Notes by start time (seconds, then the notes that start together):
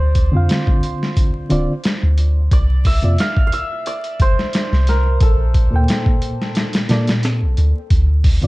Already playing: D2 C5 D5
0.15 kick, closed hi-hat
0.32 F2 D3 C4 F4
0.37 F5
0.49 snare, closed hi-hat
0.67 kick
0.83 closed hi-hat
1.03 snare
1.17 kick, closed hi-hat
1.49 D1 D3 C4 F4 D5, closed hi-hat
1.84 snare, closed hi-hat
2.03 D2
2.18 closed hi-hat
2.51 C2 D5, kick, closed hi-hat
2.85 E5, kick, open hi-hat
3.02 F2 C3 A#3 F4 D5, closed hi-hat
3.18 F5, snare, closed hi-hat
3.37 kick
3.47 F5
3.52 E5, closed hi-hat
3.86 D5, closed hi-hat
4.04 closed hi-hat
4.20 G1 C5, kick, closed hi-hat
4.39 snare
4.53 snare, closed hi-hat
4.73 C2, snare
4.87 A#4, snare, closed hi-hat
5.20 A#1 A4, kick, closed hi-hat
5.54 kick, closed hi-hat
5.71 D2 A#2 A#3 A4
5.76 G5
5.88 snare, closed hi-hat
6.06 kick
6.22 closed hi-hat
6.42 snare
6.55 snare, closed hi-hat
6.73 snare, closed hi-hat
6.89 A#2 A#3 A4 D5, snare, closed hi-hat
7.07 snare, closed hi-hat
7.23 snare, closed hi-hat
7.42 A#1
7.57 D2, closed hi-hat
7.90 D2, kick, closed hi-hat
8.24 kick, open hi-hat
8.42 F2 D3 C4 F4, closed hi-hat